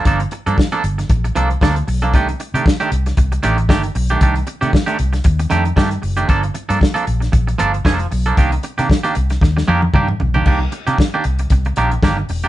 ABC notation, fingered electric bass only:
X:1
M:4/4
L:1/16
Q:"Swing 16ths" 1/4=115
K:Cdor
V:1 name="Fingered electric bass" clef=bass
G,,,2 z G,, z2 G,,,2 B,,,2 C,,2 D,,2 =B,,,2 | C,,2 z C, z2 C,,2 C,,2 A,,,2 G,,,2 =B,,,2 | C,,2 z C, z2 C,,2 E,,2 F,,2 G,,2 ^F,,,2 | G,,,2 z G,, z2 B,,,2 B,,,2 G,,,2 F,,,2 =B,,,2 |
C,,2 z C, z2 C,,2 E,,2 F,,2 G,,2 =B,,,2 | C,,2 z C, z2 C,,2 C,,2 B,,,2 G,,,2 =E,,,2 |]